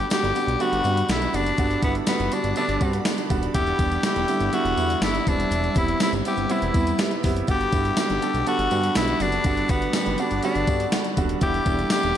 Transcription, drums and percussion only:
0.10 snare, closed hi-hat, tambourine
0.24 closed hi-hat
0.35 closed hi-hat, tambourine
0.48 closed hi-hat
0.60 closed hi-hat, tambourine
0.73 closed hi-hat
0.84 closed hi-hat, tambourine
0.97 closed hi-hat
1.09 snare, closed hi-hat, tambourine
1.21 closed hi-hat, tambourine
1.33 closed hi-hat, tambourine
1.46 closed hi-hat
1.57 kick, closed hi-hat, tambourine
1.71 closed hi-hat
1.82 kick, closed hi-hat, tambourine
1.95 closed hi-hat
2.06 snare, closed hi-hat, tambourine
2.20 closed hi-hat
2.32 closed hi-hat, tambourine
2.44 closed hi-hat, tambourine
2.56 closed hi-hat, tambourine
2.69 closed hi-hat
2.81 kick, closed hi-hat, tambourine
2.93 closed hi-hat
3.05 snare, closed hi-hat, tambourine
3.18 closed hi-hat
3.30 kick, closed hi-hat, tambourine
3.43 closed hi-hat
3.54 kick, closed hi-hat, tambourine
3.67 closed hi-hat
3.78 kick, closed hi-hat, tambourine
3.91 closed hi-hat, tambourine
4.03 snare, closed hi-hat, tambourine
4.16 closed hi-hat
4.28 closed hi-hat, tambourine
4.40 closed hi-hat, tambourine
4.53 closed hi-hat, tambourine
4.65 closed hi-hat
4.77 closed hi-hat, tambourine
4.90 closed hi-hat, tambourine
5.02 snare, closed hi-hat, tambourine
5.14 closed hi-hat, tambourine
5.27 kick, closed hi-hat, tambourine
5.40 closed hi-hat
5.51 closed hi-hat, tambourine
5.64 closed hi-hat
5.75 kick, closed hi-hat, tambourine
5.88 closed hi-hat
6.00 snare, closed hi-hat, tambourine
6.13 closed hi-hat
6.25 closed hi-hat, tambourine
6.37 closed hi-hat, tambourine
6.50 closed hi-hat, tambourine
6.62 closed hi-hat
6.74 kick, closed hi-hat, tambourine
6.87 closed hi-hat, tambourine
6.98 snare, closed hi-hat, tambourine
7.11 closed hi-hat
7.23 kick, open hi-hat, tambourine
7.36 closed hi-hat
7.47 kick, closed hi-hat, tambourine
7.61 closed hi-hat
7.72 kick, closed hi-hat, tambourine
7.85 closed hi-hat, tambourine
7.97 snare, closed hi-hat, tambourine
8.10 closed hi-hat
8.22 closed hi-hat, tambourine
8.34 closed hi-hat, tambourine
8.47 closed hi-hat, tambourine
8.59 closed hi-hat
8.71 closed hi-hat, tambourine
8.83 closed hi-hat, tambourine
8.95 snare, closed hi-hat, tambourine
9.08 closed hi-hat
9.20 closed hi-hat, tambourine
9.32 closed hi-hat
9.44 kick, closed hi-hat, tambourine
9.57 closed hi-hat
9.68 kick, closed hi-hat, tambourine
9.82 closed hi-hat
9.93 snare, closed hi-hat, tambourine
10.06 closed hi-hat
10.18 closed hi-hat, tambourine
10.30 closed hi-hat, tambourine
10.43 closed hi-hat, tambourine
10.55 closed hi-hat
10.67 kick, closed hi-hat, tambourine
10.80 closed hi-hat, tambourine
10.92 snare, closed hi-hat, tambourine
11.04 closed hi-hat, tambourine
11.17 kick, closed hi-hat, tambourine
11.29 closed hi-hat
11.41 kick, closed hi-hat, tambourine
11.54 closed hi-hat
11.65 kick, closed hi-hat, tambourine
11.79 closed hi-hat, tambourine
11.90 snare, closed hi-hat, tambourine
12.03 closed hi-hat

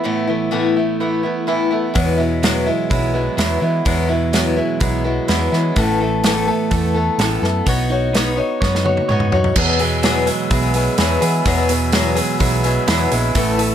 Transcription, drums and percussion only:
1.95 kick, open hi-hat
2.43 snare, open hi-hat
2.91 kick, open hi-hat
3.38 snare, open hi-hat
3.86 kick, open hi-hat
4.33 snare, open hi-hat
4.81 kick, open hi-hat
5.28 snare, open hi-hat
5.53 snare
5.76 kick, open hi-hat
6.24 snare, open hi-hat
6.71 kick, open hi-hat
7.19 snare, open hi-hat
7.44 snare
7.67 kick, open hi-hat
8.15 snare, open hi-hat
8.62 kick, snare
8.75 snare
8.86 high tom
8.97 high tom
9.09 mid tom
9.20 mid tom
9.32 floor tom
9.44 floor tom
9.55 kick, crash
9.79 open hi-hat
10.03 snare, open hi-hat
10.27 open hi-hat
10.51 kick, open hi-hat
10.74 open hi-hat
10.98 snare, open hi-hat
11.22 open hi-hat
11.46 kick, open hi-hat
11.69 open hi-hat
11.92 snare, open hi-hat
12.17 open hi-hat
12.40 kick, open hi-hat
12.64 open hi-hat
12.88 snare, open hi-hat
13.12 open hi-hat
13.35 kick, open hi-hat
13.59 open hi-hat

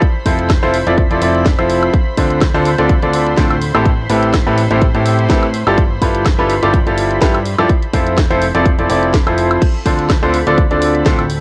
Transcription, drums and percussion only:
0.02 kick, closed hi-hat
0.26 kick, open hi-hat
0.39 closed hi-hat
0.50 kick, snare, closed hi-hat, high woodblock
0.74 open hi-hat
0.87 closed hi-hat
0.98 kick, closed hi-hat
1.11 closed hi-hat
1.22 open hi-hat
1.35 closed hi-hat
1.46 kick, snare, closed hi-hat
1.59 closed hi-hat, high woodblock
1.70 open hi-hat
1.83 closed hi-hat, high woodblock
1.94 kick, closed hi-hat
2.18 kick, open hi-hat
2.31 closed hi-hat
2.42 kick, snare, closed hi-hat, high woodblock
2.66 open hi-hat
2.79 closed hi-hat
2.90 kick, closed hi-hat
3.03 closed hi-hat
3.14 open hi-hat
3.27 closed hi-hat
3.38 kick, snare, closed hi-hat
3.51 closed hi-hat, high woodblock
3.62 open hi-hat
3.75 closed hi-hat, high woodblock
3.86 kick, closed hi-hat
4.10 open hi-hat
4.23 closed hi-hat
4.34 kick, snare, closed hi-hat, high woodblock
4.58 open hi-hat
4.71 closed hi-hat
4.82 kick, closed hi-hat
4.95 closed hi-hat
5.06 open hi-hat
5.19 closed hi-hat
5.30 kick, snare, closed hi-hat
5.43 closed hi-hat, high woodblock
5.54 open hi-hat
5.67 closed hi-hat, high woodblock
5.78 kick, closed hi-hat
6.02 kick, open hi-hat
6.15 closed hi-hat
6.26 kick, snare, closed hi-hat, high woodblock
6.50 open hi-hat
6.63 closed hi-hat
6.74 kick, closed hi-hat
6.87 closed hi-hat
6.98 open hi-hat
7.11 closed hi-hat
7.22 kick, snare, closed hi-hat
7.35 closed hi-hat, high woodblock
7.46 open hi-hat
7.59 closed hi-hat, high woodblock
7.70 kick, closed hi-hat
7.83 closed hi-hat
7.94 kick, open hi-hat
8.07 closed hi-hat
8.18 kick, snare, closed hi-hat, high woodblock
8.31 closed hi-hat
8.42 open hi-hat
8.55 closed hi-hat
8.66 kick, closed hi-hat
8.79 closed hi-hat
8.90 open hi-hat
9.03 closed hi-hat
9.14 kick, snare, closed hi-hat
9.27 closed hi-hat, high woodblock
9.38 open hi-hat
9.51 closed hi-hat, high woodblock
9.62 kick, closed hi-hat, crash
9.86 kick, open hi-hat
9.99 closed hi-hat
10.10 kick, snare, closed hi-hat, high woodblock
10.34 open hi-hat
10.47 closed hi-hat
10.58 kick, closed hi-hat
10.71 closed hi-hat
10.82 open hi-hat
10.95 closed hi-hat
11.06 kick, snare, closed hi-hat
11.19 closed hi-hat, high woodblock
11.30 open hi-hat

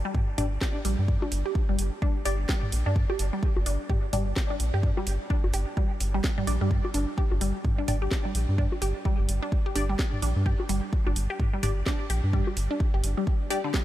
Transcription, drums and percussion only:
0.15 kick, mid tom
0.38 mid tom, open hi-hat
0.61 kick, snare
0.85 open hi-hat
1.08 kick
1.22 low bongo
1.32 open hi-hat
1.55 kick
1.79 open hi-hat
2.02 kick
2.25 open hi-hat
2.49 kick, snare
2.63 mid tom
2.72 open hi-hat
2.96 kick
3.10 low bongo
3.19 open hi-hat
3.43 kick
3.57 low bongo
3.66 open hi-hat
3.90 kick, mid tom
4.13 mid tom, open hi-hat
4.36 kick, snare
4.60 open hi-hat
4.83 kick
4.97 low bongo
5.07 open hi-hat
5.30 kick
5.44 low bongo
5.54 open hi-hat
5.77 kick
6.00 open hi-hat
6.24 kick, snare
6.38 mid tom
6.47 open hi-hat
6.71 kick
6.85 low bongo
6.94 open hi-hat
7.18 kick
7.32 low bongo
7.41 open hi-hat
7.65 kick, mid tom
7.88 mid tom, open hi-hat
8.11 kick, snare
8.35 open hi-hat
8.58 kick
8.72 low bongo
8.82 open hi-hat
9.05 kick
9.29 open hi-hat
9.52 kick
9.76 open hi-hat
9.99 kick, snare
10.13 mid tom
10.22 open hi-hat
10.46 kick
10.60 low bongo
10.69 open hi-hat
10.93 kick
11.07 low bongo
11.16 open hi-hat
11.40 kick, mid tom
11.63 mid tom, open hi-hat
11.86 kick, snare
12.10 open hi-hat
12.33 kick
12.47 low bongo
12.57 open hi-hat
12.80 kick
13.04 open hi-hat
13.27 kick
13.50 open hi-hat
13.74 kick, snare

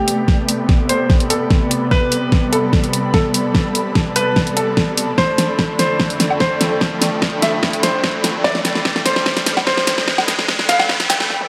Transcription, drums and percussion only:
0.08 closed hi-hat
0.28 kick, snare
0.49 closed hi-hat
0.69 kick, snare
0.89 closed hi-hat
1.10 kick, snare
1.20 closed hi-hat
1.30 closed hi-hat
1.50 kick, snare
1.71 closed hi-hat
1.91 kick, snare
2.12 closed hi-hat
2.32 kick, snare
2.53 closed hi-hat
2.73 kick, snare
2.84 closed hi-hat
2.93 closed hi-hat
3.14 kick, snare
3.34 closed hi-hat
3.55 kick, snare
3.75 closed hi-hat
3.95 kick, snare
4.16 closed hi-hat
4.36 kick, snare
4.47 closed hi-hat
4.57 closed hi-hat
4.77 kick, snare
4.97 closed hi-hat
5.18 kick, snare
5.38 snare, closed hi-hat
5.59 kick, snare
5.79 snare, closed hi-hat
6.00 kick, snare
6.10 closed hi-hat
6.20 snare, closed hi-hat
6.31 low woodblock
6.40 kick, snare
6.61 snare, closed hi-hat
6.81 kick, snare
7.02 snare, closed hi-hat
7.22 kick, snare
7.42 snare, closed hi-hat
7.63 kick, snare
7.73 closed hi-hat
7.83 snare, closed hi-hat
8.04 kick, snare
8.24 snare, closed hi-hat
8.44 kick, snare
8.55 snare
8.65 snare, closed hi-hat
8.75 snare
8.85 kick, snare
8.96 snare
9.06 snare, closed hi-hat
9.16 snare
9.26 kick, snare
9.37 snare, closed hi-hat
9.46 snare, closed hi-hat
9.57 snare, low woodblock
9.67 kick, snare
9.77 snare
9.87 snare, closed hi-hat
9.98 snare
10.08 kick, snare
10.18 snare, low woodblock
10.28 snare, closed hi-hat
10.39 snare
10.48 kick, snare
10.59 snare
10.69 snare, closed hi-hat
10.79 snare, low woodblock
10.89 kick, snare
11.00 snare, closed hi-hat
11.10 snare, closed hi-hat
11.20 snare
11.30 snare
11.41 high tom

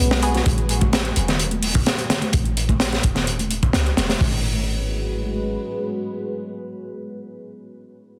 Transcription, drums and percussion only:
0.11 snare, closed hi-hat
0.23 closed hi-hat
0.35 snare, closed hi-hat, high conga
0.46 kick, closed hi-hat
0.48 closed hi-hat
0.58 closed hi-hat
0.69 closed hi-hat
0.81 kick, closed hi-hat, high conga
0.93 snare, closed hi-hat
1.05 closed hi-hat
1.16 closed hi-hat
1.28 snare, closed hi-hat, low conga
1.40 closed hi-hat
1.51 closed hi-hat, high conga
1.63 closed hi-hat, open hi-hat
1.75 kick, closed hi-hat
1.86 snare, closed hi-hat
1.98 closed hi-hat
2.10 snare, closed hi-hat, low conga
2.21 closed hi-hat, high conga
2.33 kick, closed hi-hat
2.45 closed hi-hat
2.57 closed hi-hat
2.69 kick, closed hi-hat, high conga
2.80 snare, closed hi-hat
2.92 snare, closed hi-hat
3.03 kick, closed hi-hat
3.15 snare, closed hi-hat, low conga
3.27 closed hi-hat
3.39 closed hi-hat, high conga
3.51 closed hi-hat
3.63 kick, closed hi-hat
3.73 snare, closed hi-hat
3.86 closed hi-hat
3.97 snare, closed hi-hat, high conga
4.09 snare, closed hi-hat, high conga
4.21 kick, open hi-hat

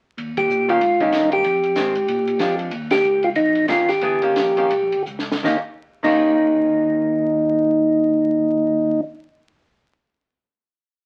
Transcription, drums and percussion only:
0.18 kick, ride
0.37 kick, ride
0.50 hi-hat pedal
0.69 ride
0.81 kick, ride
1.00 kick, ride
1.12 kick, snare, hi-hat pedal, ride
1.32 ride
1.44 kick, ride
1.63 ride
1.76 kick, snare, hi-hat pedal, ride
1.95 ride
2.08 kick, ride
2.27 ride
2.39 kick, snare, hi-hat pedal, ride
2.59 ride
2.71 kick, ride
2.91 snare, ride
3.03 hi-hat pedal
3.23 ride
3.35 kick, ride
3.55 ride
3.68 kick, snare, hi-hat pedal, ride
3.88 snare, ride
4.01 kick, ride
4.22 ride
4.36 kick, snare, hi-hat pedal, ride
4.57 ride
4.70 kick, ride
4.92 ride
5.06 hi-hat pedal
5.19 snare
5.32 snare
5.44 kick, snare
6.04 kick, crash

